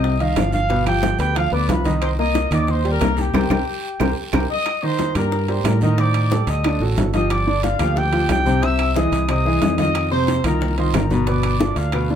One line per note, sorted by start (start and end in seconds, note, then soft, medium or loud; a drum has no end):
0.00 0.33 C2 loud
0.00 0.14 C3 medium
0.00 0.14 C4 medium
0.00 0.14 C5 medium
0.00 0.19 D#5 loud
0.00 0.19 D#6 medium
0.00 long guiro medium
0.04 high bongo medium
0.04 high conga soft
0.20 0.34 D#3 medium
0.20 0.34 D#4 medium
0.20 0.34 D#5 medium
0.20 0.52 F5 loud
0.20 high bongo soft
0.20 high conga soft
0.20 high timbale medium
0.36 1.13 G1 medium
0.36 0.64 F3 medium
0.36 0.64 F4 medium
0.36 0.64 F5 medium
0.36 high bongo soft
0.36 low bongo medium
0.36 high conga medium
0.36 high timbale medium
0.36 low timbale medium
0.36 short guiro medium
0.36 claves medium
0.52 0.84 F5 loud
0.52 high conga medium
0.52 short guiro medium
0.69 0.83 B2 medium
0.69 0.83 B3 medium
0.69 0.83 B4 medium
0.69 high bongo medium
0.69 high conga soft
0.69 high timbale medium
0.69 long guiro medium
0.86 1.13 F3 medium
0.86 1.14 F4 medium
0.86 1.17 G4 medium
0.86 1.14 F5 medium
0.86 1.17 G5 loud
0.86 high bongo soft
0.86 high conga soft
0.86 high timbale medium
0.86 claves medium
1.02 high bongo medium
1.02 high conga loud
1.02 low timbale medium
1.02 short guiro medium
1.19 1.50 D2 loud
1.19 1.33 B3 medium
1.19 1.35 G4 medium
1.19 1.33 B4 medium
1.19 1.35 G5 loud
1.19 1.33 B5 medium
1.19 high bongo soft
1.19 high conga soft
1.19 high timbale medium
1.19 short guiro medium
1.35 1.49 F3 medium
1.35 1.49 F4 medium
1.35 1.50 F5 medium
1.35 1.53 F5 loud
1.35 high bongo medium
1.35 high conga soft
1.35 high timbale medium
1.35 long guiro medium
1.35 claves medium
1.52 1.67 D2 medium
1.52 1.66 B3 medium
1.52 1.66 B4 medium
1.52 1.68 D5 loud
1.52 1.66 B5 medium
1.52 1.68 D6 medium
1.52 high bongo soft
1.52 high conga soft
1.68 2.45 C2 medium
1.68 1.82 F3 medium
1.68 1.83 F4 medium
1.68 1.94 B4 medium
1.68 1.83 F5 medium
1.68 1.94 B5 medium
1.68 high bongo soft
1.68 low bongo medium
1.68 high conga medium
1.68 high timbale medium
1.68 low timbale medium
1.68 short guiro medium
1.85 2.12 D#3 medium
1.85 2.12 D#4 medium
1.85 2.13 D#5 medium
1.85 high conga medium
1.85 high timbale medium
1.85 short guiro medium
2.02 2.10 C5 medium
2.02 2.10 C6 medium
2.02 high bongo medium
2.02 high conga soft
2.02 high timbale medium
2.02 long guiro medium
2.02 claves medium
2.18 2.46 A#3 medium
2.18 2.46 A#4 medium
2.18 2.50 D#5 loud
2.18 2.46 A#5 medium
2.18 2.50 D#6 medium
2.18 high bongo soft
2.18 high conga soft
2.35 high bongo medium
2.35 high conga medium
2.35 high timbale medium
2.35 low timbale medium
2.35 short guiro medium
2.51 2.97 D#2 loud
2.51 2.79 D#3 medium
2.51 2.79 D#4 medium
2.51 2.68 D5 medium
2.51 2.79 D#5 medium
2.51 2.68 D6 medium
2.51 high bongo soft
2.51 low conga medium
2.51 high timbale medium
2.51 short guiro medium
2.51 claves medium
2.67 2.91 C5 medium
2.67 2.91 C6 medium
2.67 high bongo medium
2.67 high conga soft
2.67 low conga medium
2.67 long guiro medium
2.85 2.98 G3 medium
2.85 2.98 G4 medium
2.85 2.99 G5 medium
2.85 high bongo soft
2.85 high conga soft
2.85 high timbale medium
2.92 3.16 A#4 loud
2.92 3.17 A#5 medium
3.01 3.32 C2 medium
3.01 3.28 A#3 medium
3.01 3.28 A#4 medium
3.01 3.29 A#5 medium
3.01 high bongo soft
3.01 low bongo medium
3.01 high conga medium
3.01 high timbale loud
3.01 low timbale medium
3.01 short guiro medium
3.01 claves medium
3.17 4.34 G4 medium
3.17 4.34 G5 medium
3.17 high conga medium
3.17 short guiro medium
3.34 3.46 C2 medium
3.34 3.45 G4 loud
3.34 3.45 A#4 medium
3.34 3.45 C5 loud
3.34 low bongo medium
3.34 high conga loud
3.34 high timbale loud
3.34 long guiro loud
3.34 claves medium
3.50 3.63 C2 loud
3.50 3.61 G4 medium
3.50 3.61 A#4 loud
3.50 3.61 C5 medium
3.50 low bongo loud
3.50 high conga loud
3.50 high timbale medium
3.50 long guiro medium
3.50 claves medium
4.00 4.13 C2 medium
4.00 4.11 G4 medium
4.00 4.11 A#4 medium
4.00 4.11 C5 loud
4.00 low bongo loud
4.00 high conga loud
4.00 high timbale loud
4.00 long guiro medium
4.00 claves medium
4.33 4.45 C2 medium
4.33 4.44 G4 loud
4.33 4.44 A#4 loud
4.33 4.44 C5 medium
4.33 low bongo loud
4.33 high conga loud
4.33 high timbale loud
4.33 long guiro loud
4.33 claves loud
4.50 4.81 D#5 loud
4.50 4.81 D#6 loud
4.66 high bongo medium
4.66 high conga soft
4.66 high timbale medium
4.66 long guiro medium
4.66 claves medium
4.83 5.10 D#3 medium
4.83 5.10 D#4 medium
4.83 5.16 C5 loud
4.83 5.10 D#5 medium
4.83 5.17 C6 medium
4.83 high bongo soft
4.83 high conga soft
4.99 high bongo medium
4.99 high conga medium
4.99 high timbale medium
4.99 low timbale medium
4.99 short guiro medium
5.15 5.62 G2 loud
5.15 5.43 G3 medium
5.15 5.43 G4 medium
5.15 5.47 A#4 loud
5.15 5.44 A#4 medium
5.15 5.47 A#5 medium
5.15 high bongo soft
5.15 low conga medium
5.15 high timbale medium
5.15 short guiro medium
5.15 claves medium
5.32 high bongo medium
5.32 high conga soft
5.32 long guiro medium
5.48 5.76 G3 medium
5.48 5.76 G4 medium
5.48 5.76 A#4 medium
5.48 5.66 C5 medium
5.48 5.66 C6 medium
5.48 high bongo soft
5.48 high conga soft
5.48 high timbale medium
5.64 6.42 A2 medium
5.64 5.81 A#4 medium
5.64 5.82 A#5 medium
5.64 high bongo soft
5.64 low bongo medium
5.64 high conga medium
5.64 high timbale loud
5.64 low timbale medium
5.64 short guiro medium
5.64 claves medium
5.81 5.96 D#3 medium
5.81 5.96 D#4 medium
5.81 5.98 A#4 medium
5.81 5.96 D#5 medium
5.81 5.98 A#5 medium
5.81 high conga medium
5.81 short guiro medium
5.98 6.26 D#3 medium
5.98 6.26 D#4 medium
5.98 6.27 C5 medium
5.98 6.45 D5 medium
5.98 6.45 D6 medium
5.98 high bongo medium
5.98 high conga soft
5.98 high timbale medium
5.98 long guiro medium
6.14 high bongo soft
6.14 high conga soft
6.14 high timbale medium
6.14 claves medium
6.30 6.59 G3 medium
6.30 6.59 G4 medium
6.30 6.59 A4 medium
6.30 high bongo medium
6.30 high conga loud
6.30 low timbale medium
6.30 short guiro medium
6.47 6.78 D2 loud
6.47 6.82 D#5 medium
6.47 6.81 D#6 medium
6.47 high bongo soft
6.47 high conga soft
6.47 high timbale medium
6.47 short guiro medium
6.64 6.78 D3 medium
6.64 6.79 D4 medium
6.64 6.79 D5 medium
6.64 high bongo medium
6.64 high conga soft
6.64 high timbale loud
6.64 long guiro medium
6.64 claves medium
6.80 6.96 A1 medium
6.80 7.08 F#3 medium
6.80 7.08 F#4 medium
6.80 7.08 A4 medium
6.80 high bongo soft
6.80 high conga soft
6.96 7.74 G1 medium
6.96 high bongo soft
6.96 low bongo medium
6.96 high conga medium
6.96 high timbale medium
6.96 low timbale medium
6.96 short guiro medium
7.13 7.41 F3 medium
7.13 7.42 F4 medium
7.13 7.42 G4 medium
7.13 7.30 D#5 loud
7.13 7.30 D#6 medium
7.13 high conga medium
7.13 high timbale medium
7.13 short guiro medium
7.30 7.64 D5 loud
7.30 7.64 D6 medium
7.30 high bongo medium
7.30 high conga soft
7.30 high timbale medium
7.30 long guiro medium
7.30 claves medium
7.47 7.74 D3 medium
7.47 7.74 D4 medium
7.47 7.74 D5 medium
7.47 high bongo soft
7.47 high conga soft
7.63 7.95 F5 loud
7.63 high bongo medium
7.63 high conga medium
7.63 high timbale medium
7.63 low timbale medium
7.63 short guiro medium
7.79 8.26 D2 loud
7.79 8.07 F3 medium
7.79 8.07 F4 medium
7.79 8.07 G4 medium
7.79 high bongo soft
7.79 low conga medium
7.79 high timbale loud
7.79 short guiro medium
7.79 claves medium
7.96 8.29 G4 medium
7.96 8.29 G5 loud
7.96 high bongo medium
7.96 high conga soft
7.96 low conga medium
7.96 long guiro medium
8.12 8.40 F3 medium
8.12 8.40 F4 medium
8.12 8.40 G4 medium
8.12 high bongo soft
8.12 high conga soft
8.12 high timbale medium
8.29 9.06 C2 medium
8.29 8.61 G4 medium
8.29 8.60 G5 loud
8.29 high bongo soft
8.29 low bongo medium
8.29 high conga medium
8.29 high timbale medium
8.29 low timbale medium
8.29 short guiro medium
8.29 claves medium
8.46 8.59 C3 medium
8.46 8.60 C4 medium
8.46 8.60 C5 medium
8.46 high conga medium
8.46 short guiro medium
8.62 8.89 C3 medium
8.62 8.90 C4 medium
8.62 8.90 C5 medium
8.62 8.96 E5 loud
8.62 8.96 E6 medium
8.62 high bongo medium
8.62 high timbale medium
8.62 long guiro medium
8.79 high bongo soft
8.79 high conga soft
8.79 high timbale loud
8.79 claves medium
8.95 9.23 E3 medium
8.95 9.23 E4 medium
8.95 9.23 G#4 medium
8.95 9.26 D#5 medium
8.95 9.27 D#6 medium
8.95 high bongo medium
8.95 high conga medium
8.95 low timbale medium
8.95 short guiro medium
9.12 9.58 C2 medium
9.12 high bongo soft
9.12 high conga soft
9.12 high timbale medium
9.12 short guiro medium
9.28 9.42 C3 medium
9.28 9.42 C4 medium
9.28 9.43 C5 medium
9.28 9.75 D#5 loud
9.28 9.76 D#6 medium
9.28 high bongo medium
9.28 high conga soft
9.28 high timbale medium
9.28 long guiro medium
9.28 claves medium
9.45 9.72 E3 medium
9.45 9.73 E4 medium
9.45 9.73 G#4 medium
9.45 high bongo soft
9.45 high conga soft
9.62 10.39 F2 medium
9.62 high bongo soft
9.62 low bongo medium
9.62 high conga medium
9.62 high timbale medium
9.62 low timbale medium
9.62 short guiro medium
9.78 10.05 D#3 medium
9.78 10.05 D#4 medium
9.78 10.06 F4 medium
9.78 10.10 D#5 loud
9.78 10.10 D#6 medium
9.78 high conga medium
9.78 high timbale medium
9.78 short guiro medium
9.95 high bongo medium
9.95 high conga soft
9.95 high timbale medium
9.95 long guiro medium
9.95 claves medium
10.11 10.38 C3 medium
10.11 10.38 C4 medium
10.11 10.39 C5 medium
10.11 10.42 C5 loud
10.11 10.42 C6 medium
10.11 high bongo soft
10.11 high conga soft
10.28 high bongo medium
10.28 high conga medium
10.28 high timbale medium
10.28 low timbale medium
10.28 short guiro medium
10.44 10.90 C2 loud
10.44 10.72 D#3 medium
10.44 10.72 D#4 medium
10.44 10.72 F4 medium
10.44 10.76 A#4 medium
10.44 10.76 A#5 medium
10.44 high bongo soft
10.44 low conga medium
10.44 high timbale medium
10.44 short guiro medium
10.44 claves medium
10.61 high bongo medium
10.61 high conga soft
10.61 low conga medium
10.61 long guiro medium
10.78 11.05 D#3 medium
10.78 11.05 D#4 medium
10.78 11.05 F4 medium
10.78 10.93 C5 medium
10.78 10.93 C6 medium
10.78 high bongo soft
10.78 high conga soft
10.78 high timbale medium
10.93 11.70 G1 medium
10.93 11.11 A#4 medium
10.93 11.11 A#5 medium
10.93 high bongo soft
10.93 low bongo medium
10.93 high conga medium
10.93 high timbale medium
10.93 low timbale medium
10.93 short guiro medium
10.93 claves medium
11.10 11.24 B2 medium
11.10 11.24 B3 medium
11.10 11.27 A#4 medium
11.10 11.25 B4 medium
11.10 11.27 A#5 medium
11.10 high conga medium
11.10 short guiro medium
11.27 11.54 B2 medium
11.27 11.54 B3 medium
11.27 11.55 B4 medium
11.27 11.77 D5 loud
11.27 11.77 D6 medium
11.27 high bongo medium
11.27 high conga soft
11.27 high timbale medium
11.27 long guiro medium
11.43 high bongo soft
11.43 high conga soft
11.43 high timbale loud
11.43 claves medium
11.60 11.87 D3 medium
11.60 11.87 D4 medium
11.60 11.87 F4 medium
11.60 high bongo medium
11.60 high conga loud
11.60 low timbale medium
11.60 short guiro medium
11.76 12.15 D2 medium
11.76 12.10 F5 medium
11.76 high bongo soft
11.76 high conga soft
11.76 high timbale medium
11.76 short guiro medium
11.92 12.07 B2 medium
11.92 12.07 B3 medium
11.92 12.07 B4 medium
11.92 high bongo medium
11.92 high conga soft
11.92 high timbale loud
11.92 long guiro medium
11.92 claves medium
12.10 12.15 D3 medium
12.10 12.15 D4 medium
12.10 12.15 F4 medium
12.10 high bongo soft
12.10 high conga soft